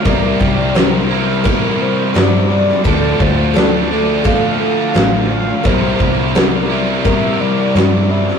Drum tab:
CC |x---x---x---x---|x---x---x---x---|x---x---x---x---|
SD |--o-o-------o--o|----o-------o---|----o-------o--o|
BD |o-o-----o-------|o-o-----o-------|o-o-----o-------|